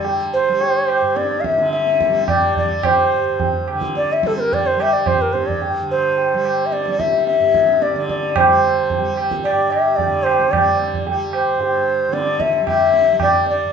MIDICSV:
0, 0, Header, 1, 4, 480
1, 0, Start_track
1, 0, Tempo, 555556
1, 41, Time_signature, 5, 2, 24, 8
1, 5801, Tempo, 543478
1, 9161, Tempo, 535236
1, 12038, End_track
2, 0, Start_track
2, 0, Title_t, "Bansuri"
2, 0, Program_c, 0, 73
2, 288, Note_on_c, 0, 72, 82
2, 1006, Note_on_c, 0, 74, 87
2, 1019, Note_off_c, 0, 72, 0
2, 1215, Note_on_c, 0, 77, 61
2, 1228, Note_off_c, 0, 74, 0
2, 1251, Note_on_c, 0, 76, 93
2, 1264, Note_off_c, 0, 77, 0
2, 1484, Note_off_c, 0, 76, 0
2, 1490, Note_on_c, 0, 76, 94
2, 1942, Note_off_c, 0, 76, 0
2, 1975, Note_on_c, 0, 74, 85
2, 2201, Note_off_c, 0, 74, 0
2, 2222, Note_on_c, 0, 74, 89
2, 2464, Note_on_c, 0, 72, 82
2, 2477, Note_off_c, 0, 74, 0
2, 3183, Note_off_c, 0, 72, 0
2, 3426, Note_on_c, 0, 74, 99
2, 3565, Note_on_c, 0, 76, 88
2, 3578, Note_off_c, 0, 74, 0
2, 3688, Note_on_c, 0, 69, 78
2, 3701, Note_off_c, 0, 76, 0
2, 3764, Note_off_c, 0, 69, 0
2, 3774, Note_on_c, 0, 72, 59
2, 3803, Note_on_c, 0, 70, 80
2, 3816, Note_off_c, 0, 72, 0
2, 3920, Note_on_c, 0, 74, 88
2, 3933, Note_off_c, 0, 70, 0
2, 4032, Note_on_c, 0, 72, 88
2, 4044, Note_off_c, 0, 74, 0
2, 4159, Note_on_c, 0, 76, 92
2, 4172, Note_off_c, 0, 72, 0
2, 4261, Note_on_c, 0, 74, 78
2, 4274, Note_off_c, 0, 76, 0
2, 4382, Note_on_c, 0, 72, 86
2, 4395, Note_off_c, 0, 74, 0
2, 4508, Note_on_c, 0, 70, 75
2, 4521, Note_off_c, 0, 72, 0
2, 4606, Note_on_c, 0, 72, 78
2, 4619, Note_off_c, 0, 70, 0
2, 4726, Note_on_c, 0, 74, 74
2, 4739, Note_off_c, 0, 72, 0
2, 4849, Note_off_c, 0, 74, 0
2, 5107, Note_on_c, 0, 72, 83
2, 5754, Note_on_c, 0, 76, 70
2, 5767, Note_off_c, 0, 72, 0
2, 5813, Note_on_c, 0, 74, 86
2, 5826, Note_off_c, 0, 76, 0
2, 6051, Note_on_c, 0, 76, 89
2, 6065, Note_off_c, 0, 74, 0
2, 6290, Note_off_c, 0, 76, 0
2, 6293, Note_on_c, 0, 76, 100
2, 6781, Note_on_c, 0, 74, 83
2, 6794, Note_off_c, 0, 76, 0
2, 7010, Note_off_c, 0, 74, 0
2, 7015, Note_on_c, 0, 74, 76
2, 7267, Note_on_c, 0, 72, 78
2, 7281, Note_off_c, 0, 74, 0
2, 7978, Note_off_c, 0, 72, 0
2, 8210, Note_on_c, 0, 74, 90
2, 8446, Note_on_c, 0, 76, 82
2, 8459, Note_off_c, 0, 74, 0
2, 8671, Note_on_c, 0, 74, 90
2, 8684, Note_off_c, 0, 76, 0
2, 8909, Note_on_c, 0, 72, 86
2, 8922, Note_off_c, 0, 74, 0
2, 9156, Note_on_c, 0, 74, 75
2, 9169, Note_off_c, 0, 72, 0
2, 9642, Note_off_c, 0, 74, 0
2, 9896, Note_on_c, 0, 72, 81
2, 10608, Note_on_c, 0, 74, 93
2, 10622, Note_off_c, 0, 72, 0
2, 10852, Note_on_c, 0, 76, 91
2, 10865, Note_off_c, 0, 74, 0
2, 11090, Note_off_c, 0, 76, 0
2, 11100, Note_on_c, 0, 76, 100
2, 11539, Note_off_c, 0, 76, 0
2, 11586, Note_on_c, 0, 74, 92
2, 11799, Note_off_c, 0, 74, 0
2, 11830, Note_on_c, 0, 74, 85
2, 12038, Note_off_c, 0, 74, 0
2, 12038, End_track
3, 0, Start_track
3, 0, Title_t, "Tanpura"
3, 0, Program_c, 1, 104
3, 0, Note_on_c, 1, 43, 55
3, 0, Note_on_c, 1, 50, 57
3, 0, Note_on_c, 1, 55, 58
3, 422, Note_off_c, 1, 55, 0
3, 422, Note_on_c, 1, 55, 62
3, 876, Note_off_c, 1, 43, 0
3, 879, Note_on_c, 1, 43, 55
3, 1355, Note_off_c, 1, 50, 0
3, 1358, Note_on_c, 1, 50, 61
3, 1805, Note_off_c, 1, 55, 0
3, 1805, Note_on_c, 1, 55, 64
3, 2266, Note_off_c, 1, 55, 0
3, 2266, Note_on_c, 1, 55, 58
3, 2725, Note_off_c, 1, 43, 0
3, 2729, Note_on_c, 1, 43, 51
3, 3200, Note_off_c, 1, 50, 0
3, 3203, Note_on_c, 1, 50, 54
3, 3645, Note_off_c, 1, 55, 0
3, 3645, Note_on_c, 1, 55, 66
3, 4115, Note_off_c, 1, 55, 0
3, 4115, Note_on_c, 1, 55, 57
3, 4592, Note_off_c, 1, 43, 0
3, 4595, Note_on_c, 1, 43, 60
3, 5021, Note_off_c, 1, 50, 0
3, 5025, Note_on_c, 1, 50, 57
3, 5476, Note_off_c, 1, 55, 0
3, 5476, Note_on_c, 1, 55, 62
3, 5940, Note_off_c, 1, 55, 0
3, 5940, Note_on_c, 1, 55, 60
3, 6402, Note_off_c, 1, 43, 0
3, 6405, Note_on_c, 1, 43, 55
3, 6879, Note_off_c, 1, 50, 0
3, 6882, Note_on_c, 1, 50, 59
3, 7349, Note_off_c, 1, 55, 0
3, 7349, Note_on_c, 1, 55, 51
3, 7811, Note_off_c, 1, 55, 0
3, 7811, Note_on_c, 1, 55, 59
3, 8276, Note_off_c, 1, 43, 0
3, 8279, Note_on_c, 1, 43, 53
3, 8733, Note_off_c, 1, 50, 0
3, 8737, Note_on_c, 1, 50, 54
3, 9201, Note_off_c, 1, 55, 0
3, 9201, Note_on_c, 1, 55, 59
3, 9655, Note_off_c, 1, 55, 0
3, 9655, Note_on_c, 1, 55, 60
3, 10110, Note_off_c, 1, 43, 0
3, 10113, Note_on_c, 1, 43, 55
3, 10561, Note_off_c, 1, 50, 0
3, 10565, Note_on_c, 1, 50, 60
3, 11033, Note_off_c, 1, 55, 0
3, 11033, Note_on_c, 1, 55, 51
3, 11498, Note_off_c, 1, 55, 0
3, 11498, Note_on_c, 1, 55, 54
3, 11948, Note_off_c, 1, 43, 0
3, 11951, Note_on_c, 1, 43, 59
3, 12038, Note_off_c, 1, 43, 0
3, 12038, Note_off_c, 1, 50, 0
3, 12038, Note_off_c, 1, 55, 0
3, 12038, End_track
4, 0, Start_track
4, 0, Title_t, "Tabla"
4, 39, Note_on_c, 9, 63, 78
4, 125, Note_off_c, 9, 63, 0
4, 524, Note_on_c, 9, 63, 72
4, 610, Note_off_c, 9, 63, 0
4, 763, Note_on_c, 9, 60, 53
4, 849, Note_off_c, 9, 60, 0
4, 1006, Note_on_c, 9, 62, 75
4, 1093, Note_off_c, 9, 62, 0
4, 1131, Note_on_c, 9, 62, 49
4, 1217, Note_off_c, 9, 62, 0
4, 1247, Note_on_c, 9, 37, 61
4, 1334, Note_off_c, 9, 37, 0
4, 1368, Note_on_c, 9, 62, 60
4, 1455, Note_off_c, 9, 62, 0
4, 1494, Note_on_c, 9, 62, 75
4, 1580, Note_off_c, 9, 62, 0
4, 1615, Note_on_c, 9, 62, 58
4, 1701, Note_off_c, 9, 62, 0
4, 1733, Note_on_c, 9, 37, 63
4, 1819, Note_off_c, 9, 37, 0
4, 1856, Note_on_c, 9, 62, 57
4, 1942, Note_off_c, 9, 62, 0
4, 1969, Note_on_c, 9, 60, 67
4, 1969, Note_on_c, 9, 64, 67
4, 2055, Note_off_c, 9, 60, 0
4, 2055, Note_off_c, 9, 64, 0
4, 2216, Note_on_c, 9, 64, 57
4, 2302, Note_off_c, 9, 64, 0
4, 2448, Note_on_c, 9, 60, 99
4, 2448, Note_on_c, 9, 64, 83
4, 2535, Note_off_c, 9, 60, 0
4, 2535, Note_off_c, 9, 64, 0
4, 2935, Note_on_c, 9, 63, 67
4, 2935, Note_on_c, 9, 64, 67
4, 3021, Note_off_c, 9, 63, 0
4, 3021, Note_off_c, 9, 64, 0
4, 3177, Note_on_c, 9, 60, 58
4, 3263, Note_off_c, 9, 60, 0
4, 3296, Note_on_c, 9, 37, 56
4, 3382, Note_off_c, 9, 37, 0
4, 3416, Note_on_c, 9, 62, 72
4, 3503, Note_off_c, 9, 62, 0
4, 3541, Note_on_c, 9, 62, 51
4, 3627, Note_off_c, 9, 62, 0
4, 3658, Note_on_c, 9, 37, 67
4, 3744, Note_off_c, 9, 37, 0
4, 3783, Note_on_c, 9, 62, 58
4, 3869, Note_off_c, 9, 62, 0
4, 3910, Note_on_c, 9, 63, 75
4, 3910, Note_on_c, 9, 64, 66
4, 3996, Note_off_c, 9, 63, 0
4, 3996, Note_off_c, 9, 64, 0
4, 4147, Note_on_c, 9, 60, 61
4, 4234, Note_off_c, 9, 60, 0
4, 4373, Note_on_c, 9, 60, 69
4, 4373, Note_on_c, 9, 64, 69
4, 4459, Note_off_c, 9, 60, 0
4, 4459, Note_off_c, 9, 64, 0
4, 4622, Note_on_c, 9, 62, 59
4, 4709, Note_off_c, 9, 62, 0
4, 4743, Note_on_c, 9, 64, 44
4, 4829, Note_off_c, 9, 64, 0
4, 4854, Note_on_c, 9, 63, 74
4, 4940, Note_off_c, 9, 63, 0
4, 5337, Note_on_c, 9, 63, 70
4, 5423, Note_off_c, 9, 63, 0
4, 5575, Note_on_c, 9, 60, 60
4, 5661, Note_off_c, 9, 60, 0
4, 5808, Note_on_c, 9, 62, 73
4, 5896, Note_off_c, 9, 62, 0
4, 5927, Note_on_c, 9, 62, 51
4, 6015, Note_off_c, 9, 62, 0
4, 6050, Note_on_c, 9, 37, 61
4, 6139, Note_off_c, 9, 37, 0
4, 6171, Note_on_c, 9, 62, 57
4, 6260, Note_off_c, 9, 62, 0
4, 6293, Note_on_c, 9, 62, 75
4, 6381, Note_off_c, 9, 62, 0
4, 6412, Note_on_c, 9, 62, 63
4, 6500, Note_off_c, 9, 62, 0
4, 6534, Note_on_c, 9, 37, 58
4, 6623, Note_off_c, 9, 37, 0
4, 6660, Note_on_c, 9, 62, 57
4, 6748, Note_off_c, 9, 62, 0
4, 6777, Note_on_c, 9, 62, 69
4, 6865, Note_off_c, 9, 62, 0
4, 6901, Note_on_c, 9, 62, 62
4, 6990, Note_off_c, 9, 62, 0
4, 7020, Note_on_c, 9, 37, 60
4, 7108, Note_off_c, 9, 37, 0
4, 7141, Note_on_c, 9, 62, 54
4, 7230, Note_off_c, 9, 62, 0
4, 7252, Note_on_c, 9, 60, 102
4, 7252, Note_on_c, 9, 64, 90
4, 7340, Note_off_c, 9, 60, 0
4, 7340, Note_off_c, 9, 64, 0
4, 7732, Note_on_c, 9, 63, 76
4, 7732, Note_on_c, 9, 64, 67
4, 7820, Note_off_c, 9, 63, 0
4, 7820, Note_off_c, 9, 64, 0
4, 7973, Note_on_c, 9, 60, 60
4, 8061, Note_off_c, 9, 60, 0
4, 8097, Note_on_c, 9, 37, 60
4, 8185, Note_off_c, 9, 37, 0
4, 8220, Note_on_c, 9, 60, 75
4, 8309, Note_off_c, 9, 60, 0
4, 8459, Note_on_c, 9, 60, 65
4, 8547, Note_off_c, 9, 60, 0
4, 8689, Note_on_c, 9, 63, 72
4, 8689, Note_on_c, 9, 64, 71
4, 8778, Note_off_c, 9, 63, 0
4, 8778, Note_off_c, 9, 64, 0
4, 8935, Note_on_c, 9, 60, 59
4, 9023, Note_off_c, 9, 60, 0
4, 9056, Note_on_c, 9, 37, 55
4, 9144, Note_off_c, 9, 37, 0
4, 9172, Note_on_c, 9, 60, 71
4, 9172, Note_on_c, 9, 64, 63
4, 9261, Note_off_c, 9, 60, 0
4, 9261, Note_off_c, 9, 64, 0
4, 9409, Note_on_c, 9, 62, 57
4, 9499, Note_off_c, 9, 62, 0
4, 9539, Note_on_c, 9, 64, 48
4, 9628, Note_off_c, 9, 64, 0
4, 9653, Note_on_c, 9, 63, 75
4, 9743, Note_off_c, 9, 63, 0
4, 9890, Note_on_c, 9, 60, 58
4, 9979, Note_off_c, 9, 60, 0
4, 10136, Note_on_c, 9, 63, 75
4, 10226, Note_off_c, 9, 63, 0
4, 10608, Note_on_c, 9, 62, 79
4, 10698, Note_off_c, 9, 62, 0
4, 10730, Note_on_c, 9, 62, 53
4, 10820, Note_off_c, 9, 62, 0
4, 10846, Note_on_c, 9, 37, 60
4, 10935, Note_off_c, 9, 37, 0
4, 10967, Note_on_c, 9, 62, 60
4, 11057, Note_off_c, 9, 62, 0
4, 11090, Note_on_c, 9, 60, 69
4, 11090, Note_on_c, 9, 64, 61
4, 11180, Note_off_c, 9, 60, 0
4, 11180, Note_off_c, 9, 64, 0
4, 11329, Note_on_c, 9, 62, 60
4, 11418, Note_off_c, 9, 62, 0
4, 11562, Note_on_c, 9, 60, 68
4, 11562, Note_on_c, 9, 64, 62
4, 11652, Note_off_c, 9, 60, 0
4, 11652, Note_off_c, 9, 64, 0
4, 11802, Note_on_c, 9, 62, 57
4, 11892, Note_off_c, 9, 62, 0
4, 12038, End_track
0, 0, End_of_file